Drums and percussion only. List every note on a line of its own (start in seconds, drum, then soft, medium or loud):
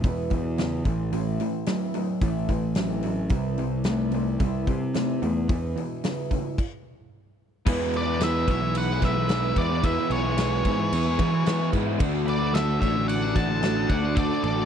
0.04 kick loud
0.04 open hi-hat medium
0.30 kick medium
0.30 open hi-hat soft
0.58 snare medium
0.58 open hi-hat medium
0.85 kick medium
0.85 open hi-hat soft
1.13 open hi-hat medium
1.40 open hi-hat soft
1.66 snare medium
1.66 open hi-hat medium
1.94 open hi-hat soft
2.21 kick loud
2.21 open hi-hat medium
2.48 kick medium
2.48 open hi-hat soft
2.75 snare loud
2.75 open hi-hat medium
3.03 open hi-hat soft
3.29 kick loud
3.29 open hi-hat medium
3.58 open hi-hat soft
3.84 snare loud
3.84 open hi-hat medium
4.12 open hi-hat soft
4.40 kick loud
4.40 open hi-hat medium
4.67 kick medium
4.67 open hi-hat soft
4.94 snare medium
4.94 open hi-hat medium
5.22 open hi-hat soft
5.49 kick loud
5.49 open hi-hat medium
5.77 open hi-hat soft
6.04 snare loud
6.04 open hi-hat medium
6.31 kick medium
6.31 open hi-hat soft
6.58 kick medium
6.58 crash medium
7.67 kick loud
7.67 crash loud
7.67 crash medium
7.94 crash medium
8.21 snare loud
8.21 crash medium
8.48 kick medium
8.48 crash medium
8.75 crash medium
9.02 kick medium
9.02 snare soft
9.02 crash medium
9.29 snare loud
9.29 crash medium
9.56 kick medium
9.56 crash medium
9.84 kick medium
9.84 crash medium
10.11 crash medium
10.38 snare medium
10.38 crash medium
10.65 kick medium
10.65 crash medium
10.93 crash medium
11.19 kick medium
11.19 crash medium
11.46 snare loud
11.46 crash medium
11.73 kick medium
11.73 crash medium
12.00 kick loud
12.00 crash medium
12.28 crash medium
12.55 snare loud
12.55 crash medium
12.82 kick medium
12.82 crash medium
13.09 crash medium
13.36 kick medium
13.36 snare soft
13.36 crash medium
13.63 snare loud
13.63 crash medium
13.90 kick medium
13.90 crash medium
14.17 kick loud
14.17 crash medium
14.44 crash medium